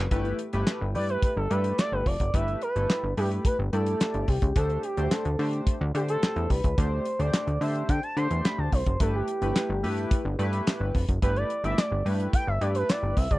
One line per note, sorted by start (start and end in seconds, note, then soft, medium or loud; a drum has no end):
0.11 0.34 G1 loud
0.11 0.38 A3 medium
0.11 0.39 E4 medium
0.11 0.39 G4 medium
0.11 0.39 B4 medium
0.11 kick loud
0.11 closed hi-hat medium
0.25 closed hi-hat soft
0.39 closed hi-hat medium
0.53 0.65 G1 loud
0.53 0.80 A3 medium
0.53 0.80 E4 medium
0.53 0.80 G4 medium
0.53 0.81 B4 medium
0.53 closed hi-hat soft
0.67 snare loud
0.67 clap loud
0.67 closed hi-hat medium
0.81 0.97 G1 loud
0.94 1.17 G2 medium
0.94 1.31 A3 medium
0.94 1.31 E4 medium
0.94 1.31 G4 medium
0.94 1.31 B4 medium
0.94 1.08 D5 medium
0.94 open hi-hat medium
1.09 1.22 B4 medium
1.09 closed hi-hat soft
1.22 1.36 B4 loud
1.22 kick loud
1.22 closed hi-hat medium
1.37 1.48 G1 loud
1.37 1.53 A4 medium
1.50 1.73 G2 loud
1.50 2.04 A3 medium
1.50 2.04 E4 medium
1.50 2.05 G4 medium
1.50 2.05 A4 medium
1.50 1.79 B4 medium
1.50 closed hi-hat medium
1.64 closed hi-hat medium
1.78 1.94 D5 loud
1.78 snare loud
1.78 clap medium
1.78 closed hi-hat medium
1.92 2.03 G1 medium
1.92 2.08 B4 loud
2.06 2.17 F1 medium
2.06 2.36 D5 loud
2.06 kick medium
2.06 open hi-hat medium
2.20 2.31 F#1 medium
2.20 kick medium
2.20 closed hi-hat soft
2.34 2.56 G1 loud
2.34 2.61 A3 medium
2.34 2.61 E4 medium
2.34 2.61 G4 medium
2.34 2.61 B4 medium
2.34 2.62 E5 loud
2.34 kick loud
2.34 closed hi-hat medium
2.48 closed hi-hat soft
2.62 3.14 B4 loud
2.62 closed hi-hat medium
2.75 2.87 G1 loud
2.75 3.02 A3 medium
2.75 3.03 E4 medium
2.75 3.03 G4 medium
2.75 3.03 A4 medium
2.75 closed hi-hat soft
2.90 snare loud
2.90 clap loud
2.90 closed hi-hat medium
3.03 3.14 G1 medium
3.17 3.40 G2 loud
3.17 3.53 A3 medium
3.17 3.53 E4 medium
3.17 3.53 G4 medium
3.17 3.30 G4 medium
3.17 3.54 B4 medium
3.17 open hi-hat medium
3.31 closed hi-hat medium
3.45 3.57 B4 medium
3.45 kick loud
3.45 closed hi-hat medium
3.59 3.70 G1 loud
3.72 3.95 G2 loud
3.72 4.27 A3 medium
3.72 4.27 E4 medium
3.72 4.27 G4 medium
3.72 4.30 A4 medium
3.72 4.27 D5 medium
3.72 closed hi-hat medium
3.86 closed hi-hat medium
4.00 snare loud
4.00 clap medium
4.00 closed hi-hat medium
4.14 4.25 G1 medium
4.14 closed hi-hat soft
4.28 4.39 C2 medium
4.28 4.56 G4 medium
4.28 kick medium
4.28 open hi-hat medium
4.42 4.53 C#2 medium
4.42 kick medium
4.42 closed hi-hat soft
4.56 4.78 D2 loud
4.56 4.83 A3 medium
4.56 4.83 D4 medium
4.56 4.83 G4 medium
4.56 4.82 A4 medium
4.56 4.83 C5 medium
4.56 kick loud
4.56 closed hi-hat medium
4.70 closed hi-hat soft
4.83 5.13 G4 medium
4.83 closed hi-hat medium
4.97 5.09 D2 loud
4.97 5.25 A3 medium
4.97 5.25 D4 medium
4.97 5.25 G4 medium
4.97 5.25 C5 medium
4.97 closed hi-hat soft
5.11 5.39 A4 medium
5.11 snare loud
5.11 clap loud
5.11 closed hi-hat medium
5.25 5.36 D2 medium
5.25 closed hi-hat soft
5.39 5.61 D3 medium
5.39 5.75 A3 medium
5.39 5.75 D4 medium
5.39 5.75 G4 medium
5.39 5.76 C5 medium
5.39 open hi-hat medium
5.53 closed hi-hat soft
5.67 kick loud
5.67 closed hi-hat loud
5.81 5.92 D2 loud
5.94 6.17 D3 medium
5.94 6.49 A3 medium
5.94 6.49 D4 medium
5.94 6.49 G4 medium
5.94 6.02 G4 medium
5.94 6.49 C5 medium
5.94 closed hi-hat medium
6.08 6.52 A4 medium
6.08 closed hi-hat medium
6.23 snare loud
6.23 clap medium
6.23 closed hi-hat medium
6.36 6.47 E2 medium
6.36 closed hi-hat soft
6.50 6.61 C2 medium
6.50 6.80 B4 medium
6.50 kick medium
6.50 open hi-hat medium
6.64 6.75 C#2 medium
6.64 kick medium
6.64 closed hi-hat soft
6.78 7.00 D2 loud
6.78 7.05 A3 medium
6.78 7.05 D4 medium
6.78 7.06 G4 medium
6.78 7.22 C5 loud
6.78 7.06 C5 medium
6.78 kick loud
6.78 closed hi-hat medium
7.05 closed hi-hat medium
7.19 7.31 D2 loud
7.19 7.47 A3 medium
7.19 7.47 D4 medium
7.19 7.47 G4 medium
7.19 7.47 C5 medium
7.19 7.63 D5 loud
7.19 closed hi-hat soft
7.34 snare loud
7.34 clap medium
7.34 closed hi-hat medium
7.47 7.59 D2 loud
7.47 closed hi-hat soft
7.61 7.83 D3 loud
7.61 7.98 A3 medium
7.61 7.98 D4 medium
7.61 7.98 G4 medium
7.61 7.98 C5 medium
7.61 7.89 E5 loud
7.61 open hi-hat medium
7.75 closed hi-hat soft
7.89 8.00 D3 loud
7.89 8.02 G5 loud
7.89 kick loud
7.89 closed hi-hat medium
8.03 8.18 A5 loud
8.03 closed hi-hat soft
8.16 8.28 D3 loud
8.16 8.71 A3 medium
8.16 8.71 D4 medium
8.16 8.71 G4 medium
8.16 8.71 C5 medium
8.16 8.46 C6 medium
8.16 closed hi-hat medium
8.31 8.42 E2 medium
8.31 closed hi-hat medium
8.45 8.60 B5 loud
8.45 snare loud
8.45 clap medium
8.45 closed hi-hat medium
8.58 8.70 D2 medium
8.58 8.74 A5 medium
8.72 8.84 C2 medium
8.72 9.02 C5 medium
8.72 kick medium
8.72 open hi-hat medium
8.86 8.98 F#1 medium
8.86 kick medium
8.86 closed hi-hat medium
9.00 9.23 G1 loud
9.00 9.27 A3 medium
9.00 9.27 E4 medium
9.00 9.27 G4 medium
9.00 9.14 A4 medium
9.00 9.28 B4 medium
9.00 kick loud
9.00 closed hi-hat loud
9.15 10.49 G4 medium
9.28 closed hi-hat medium
9.42 9.53 G1 loud
9.42 9.69 A3 medium
9.42 9.69 E4 medium
9.42 9.69 G4 medium
9.42 9.69 B4 medium
9.42 closed hi-hat soft
9.56 snare loud
9.56 clap loud
9.56 closed hi-hat loud
9.70 9.85 G1 loud
9.83 10.06 G2 loud
9.83 10.20 A3 medium
9.83 10.20 E4 medium
9.83 10.20 G4 medium
9.83 10.20 B4 loud
9.83 open hi-hat medium
9.98 closed hi-hat soft
10.11 kick loud
10.11 closed hi-hat loud
10.25 10.36 G1 loud
10.39 10.61 G2 loud
10.39 10.93 A3 medium
10.39 10.93 E4 medium
10.39 10.93 G4 medium
10.39 10.93 B4 loud
10.39 closed hi-hat medium
10.53 closed hi-hat medium
10.67 snare loud
10.67 clap loud
10.67 closed hi-hat medium
10.80 10.92 G1 medium
10.95 11.06 F1 medium
10.95 kick medium
10.95 open hi-hat medium
11.08 11.20 F#1 medium
11.08 kick medium
11.08 closed hi-hat medium
11.22 11.45 G1 loud
11.22 11.49 A3 medium
11.22 11.49 E4 medium
11.22 11.50 G4 medium
11.22 11.50 B4 medium
11.22 11.38 B4 medium
11.22 kick loud
11.22 closed hi-hat medium
11.36 11.63 D5 loud
11.36 closed hi-hat soft
11.50 closed hi-hat medium
11.64 11.75 G1 loud
11.64 11.91 A3 medium
11.64 11.91 E4 medium
11.64 11.91 G4 medium
11.64 11.91 D5 medium
11.64 11.80 E5 loud
11.64 closed hi-hat soft
11.78 12.06 D5 medium
11.78 snare loud
11.78 clap medium
11.78 closed hi-hat loud
11.92 12.03 G1 medium
12.05 12.28 G2 loud
12.05 12.42 A3 medium
12.05 12.42 E4 medium
12.05 12.42 G4 medium
12.05 12.42 B4 medium
12.05 open hi-hat medium
12.20 closed hi-hat medium
12.33 12.49 G5 loud
12.33 kick loud
12.33 closed hi-hat loud
12.47 12.59 G1 loud
12.47 12.63 E5 loud
12.61 12.84 G2 loud
12.61 13.15 A3 medium
12.61 13.16 E4 medium
12.61 13.16 G4 medium
12.61 13.16 B4 medium
12.61 12.75 D5 loud
12.61 closed hi-hat medium
12.75 12.91 B4 medium
12.75 closed hi-hat medium
12.89 13.18 D5 loud
12.89 snare loud
12.89 clap loud
12.89 closed hi-hat medium
13.03 13.14 G1 medium
13.17 13.28 C2 medium
13.17 13.30 E5 medium
13.17 kick medium
13.17 open hi-hat medium
13.31 13.39 C#2 medium
13.31 13.37 D5 medium
13.31 kick medium
13.31 closed hi-hat medium